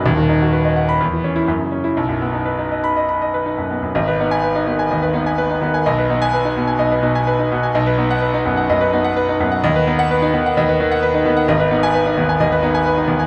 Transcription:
<<
  \new Staff \with { instrumentName = "Grand piano" } { \time 4/4 \key fis \mixolydian \tempo 4 = 127 << { r4. r16 b''16 r8. e'16 r8. e'16 | r4. r16 b''8 r4. r16 | \key gis \minor r8. gis''8 r2 r8. | r8. gis''8 r2 r8. |
r8. fis''8 r2 r8. | r8. fis''8 r2 r8. | r8. gis''8 r2 r8. | } \\ { r1 | r1 | dis''16 b'16 dis'8 b'16 dis'16 dis16 gis''16 dis''16 b'16 dis'16 gis''16 b'16 dis'16 dis16 gis''16 | dis''16 b'16 dis'8 b'16 dis'16 b,16 gis''16 dis''16 b'16 dis'16 gis''16 b'16 dis'16 b,16 gis''16 |
dis''16 b'16 dis'8 b'16 dis'16 fis,16 fis''16 dis''16 b'16 dis'16 fis''16 b'16 dis'16 fis,16 fis''16 | dis''16 b'16 dis'8 b'16 dis'16 dis16 fis''16 dis''16 b'16 dis'16 fis''16 b'16 dis'16 dis16 fis''16 | dis''16 b'16 dis'8 b'16 dis'16 dis,16 gis''16 dis''16 b'16 dis'16 gis''16 b'16 dis'16 dis,16 gis''16 | } >> }
  \new Staff \with { instrumentName = "Grand piano" } { \time 4/4 \key fis \mixolydian <dis,, dis,>16 dis16 dis'16 fis'16 b'16 dis''16 fis''8 e,16 e16 cis'8 fis,16 cis16 cis'8 | b,,16 fis,16 b16 dis'16 b'16 dis'16 dis''8 dis''16 b''16 dis''16 b'16 dis'16 fis,16 b16 fis,16 | \key gis \minor gis,,8 b8. r16 b8 dis,8 b8. r16 b8 | b,,8 b8. r16 b8 b,,8 b,8. r16 b8 |
b,,8 b8. r16 b8 fis,8 b8. r16 b8 | dis,8 b8. r16 b8 dis,8 dis8. r16 b8 | gis,,8 b8. r16 b8 dis,8 b8. r16 b8 | }
>>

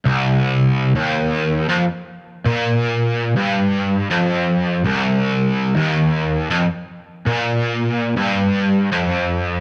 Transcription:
\new Staff \with { instrumentName = "Overdriven electric guitar" } { \clef bass \time 4/4 \key c \minor \tempo 4 = 100 c,4. ees,4~ ees,16 f,16 r4 | bes,4. g,4~ g,16 f,4~ f,16 | c,4. ees,4~ ees,16 f,16 r4 | bes,4. g,4~ g,16 f,4~ f,16 | }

